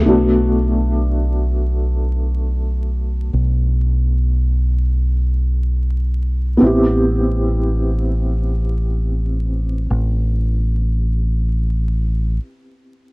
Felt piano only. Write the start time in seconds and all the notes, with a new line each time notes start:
0.00 A3 B3
0.05 D4 F#4
6.57 B3 C4
6.63 E4 G4